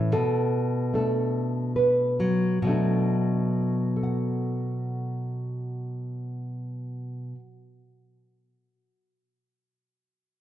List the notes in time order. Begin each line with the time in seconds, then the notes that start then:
Already playing: A2 E3 A4
0.12 B2 A4
0.94 A3 D4 A4
1.76 B4
2.20 F#3
2.62 B2 F#3
2.67 A3 D4 A4
3.96 A4
4.03 F#5